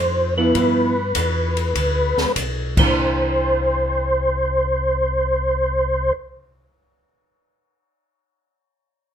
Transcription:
Already playing: tonewheel organ F2 C5
0.37 hollow-body jazz guitar F3 B3 E4, tonewheel organ B4
0.55 tonewheel organ G2, hollow-body jazz guitar F3 B3 E4, kick, ride
1.15 tonewheel organ E2, kick, hi-hat pedal, ride
1.57 ride
1.75 tonewheel organ D2, kick, ride
2.17 tonewheel organ D2, snare
2.35 tonewheel organ B1, kick, hi-hat pedal, ride
2.77 tonewheel organ C2 C5, hollow-body jazz guitar E3 A#3 D4, kick, crash

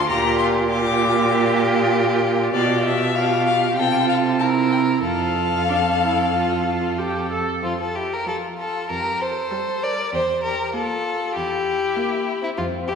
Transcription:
Already playing: cello D2
0.09 cello A#2, viola F4, violin G4 A#5
0.38 violin C6
0.69 viola F4, violin G4 D6
2.53 cello B2, viola F4, violin G4 D5
2.85 violin E5
3.15 viola F4, violin G4 F5
3.46 violin F5
3.77 cello C3, viola F4, violin A4 G5
4.09 violin F5
4.39 viola E4, violin A#4 A5
4.72 violin G5
5.04 cello F2, viola F4, violin A4 F5
5.69 viola D4
6.01 viola E4
6.34 viola F4
6.66 viola F4
6.98 viola G4
7.31 viola A4
7.63 cello F2, violin C4 F4
7.80 violin F4 A4
7.95 violin E4 G4
8.12 violin G4 A#4
8.26 viola F3, violin F4 A4
8.58 violin F4 A4
8.89 cello F2, violin G4 A#4
9.21 violin A4 C5
9.51 viola G3
9.82 violin A#4 D5
10.12 cello E2, violin G4 C5
10.43 violin G4 A#4
10.74 viola A#3, violin F4 A4
11.35 cello E2, violin E4 G4
11.96 viola A#3
12.42 violin C4 E4
12.58 cello F2, violin C4 F4
12.88 violin E4 G4

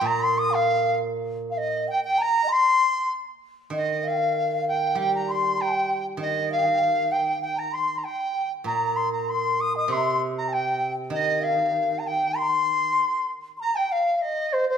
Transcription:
0.01 guzheng A#2, xiao A#5
0.06 dizi A#5
0.19 xiao C6, dizi C6
0.38 dizi D#6
0.50 xiao F5, dizi F5
1.50 xiao F5, dizi F5
1.57 xiao D#5, dizi D#5
1.88 xiao G5, dizi G5
2.04 dizi G5, xiao G5
2.18 xiao A#5, dizi A#5
2.44 xiao D#5
2.48 xiao C6
2.52 dizi C6
3.70 guzheng D#3, xiao D#5
3.77 dizi D#5
4.04 xiao F5, dizi F5
4.10 xiao G5
4.18 xiao F5
4.68 dizi G5
4.95 guzheng G3, xiao G5
5.00 dizi G5
5.15 dizi A#5
5.28 xiao C6, dizi C6
5.58 xiao G5, dizi G5
6.17 guzheng D#3, xiao D#5
6.22 dizi D#5
6.51 xiao F5, dizi F5
6.59 xiao G5
6.66 xiao F5
6.74 xiao G5
6.82 xiao F5
7.12 dizi G5, xiao G5
7.42 xiao G5, dizi G5
7.56 xiao A#5, dizi A#5
7.72 xiao C6, dizi C6
7.98 dizi A#5
8.04 xiao G5, dizi G5
8.64 guzheng A#2, dizi A#5, xiao A#5
8.96 dizi C6
9.13 dizi A#5, xiao A#5
9.28 xiao C6, dizi C6
9.61 dizi D#6
9.75 xiao D#5, dizi D#6
9.88 guzheng C3, xiao C6
9.92 dizi C6
9.97 xiao A#5
10.02 xiao C6
10.38 dizi A#5
10.43 xiao A#5
10.48 xiao G5
10.53 dizi G5
11.10 guzheng D#3, xiao D#5
11.15 dizi D#5
11.41 xiao F5, dizi F5
11.99 dizi A#5
12.05 xiao G5, dizi G5
12.35 xiao C6, dizi C6
12.42 xiao A#5
12.49 xiao C6
13.57 xiao A#5 C6
13.62 dizi A#5
13.75 xiao G5, dizi G5
13.92 dizi F5, xiao F5
14.18 dizi F5
14.22 dizi D#5, xiao D#5
14.53 dizi C5
14.69 dizi C5, xiao C5

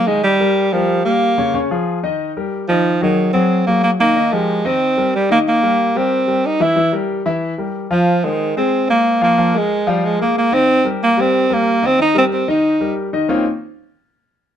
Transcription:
0.07 grand piano D#3 D#4 D#5, alto saxophone G#3
0.24 alto saxophone G3
0.40 grand piano G3 G4 A#4
0.72 alto saxophone F3, grand piano G3 G4 A#4
1.05 grand piano G3 G4 A#4, alto saxophone A#3
1.38 grand piano C#3 C#4 C#5
1.54 grand piano C#3 C#4 C#5
1.71 grand piano F3 F4 G#4
2.03 grand piano D#3 D#4 D#5
2.37 grand piano G3 G4 A#4
2.69 grand piano D#3 D#4 D#5, alto saxophone F3
3.02 alto saxophone D#3, grand piano F#3 F#4 G#4
3.33 grand piano F#3 F#4 G#4, alto saxophone C4
3.67 grand piano F#3 F#4 G#4, alto saxophone A#3
3.84 alto saxophone A#3
3.99 grand piano D#3 D#4 D#5, alto saxophone A#3
4.16 grand piano D#3 D#4 D#5
4.32 grand piano F3 G4 A#4, alto saxophone G#3
4.65 grand piano D#3 D#4 D#5, alto saxophone C4
4.97 grand piano G3 G4 A#4
5.16 alto saxophone G3
5.30 grand piano D#3 D#4 D#5, alto saxophone A#3
5.48 alto saxophone A#3
5.63 grand piano G3 G4 A#4
5.96 grand piano G3 G4 A#4, alto saxophone C4
6.27 grand piano G3 G4 A#4
6.46 alto saxophone D#4
6.60 grand piano E3 E4 E5, alto saxophone E4
6.76 grand piano E3 E4 E5
6.93 grand piano G3 G4 A#4
7.26 grand piano E3 E4 E5
7.58 grand piano G3 G4 A#4
7.91 grand piano F3 F4 F5, alto saxophone F3
8.24 alto saxophone D#3, grand piano G#3 G#4 C5
8.57 grand piano G#3 G#4 C5, alto saxophone C4
8.89 grand piano G#3 G#4 C5, alto saxophone A#3
9.21 grand piano F3 F4 F5, alto saxophone A#3
9.38 grand piano F3 F4 F5
9.54 grand piano G#3 G#4 A#4, alto saxophone G#3
9.87 grand piano F3 F4 F5, alto saxophone G3
10.05 alto saxophone G#3
10.19 grand piano G#3 G#4 A#4, alto saxophone A#3
10.38 alto saxophone A#3
10.52 grand piano D#3 D#4 D#5, alto saxophone C4
10.84 grand piano G3 G4 A#4
11.04 alto saxophone A#3
11.17 grand piano G3 G4 A#4, alto saxophone C4
11.50 grand piano G3 G4 A#4, alto saxophone A#3
11.82 grand piano D#3 D#4 D#5
11.87 alto saxophone C4
11.99 grand piano D#3 D#4 D#5, alto saxophone D#4
12.14 grand piano G3 G4 A#4, alto saxophone C4
12.33 alto saxophone C4
12.48 grand piano D#3 D#4 D#5, alto saxophone D#4
12.80 grand piano G3 G4 A#4
13.13 grand piano D#3 D#4 D#5
13.29 grand piano D#3 A#3 C4 C#4 D#4 F4

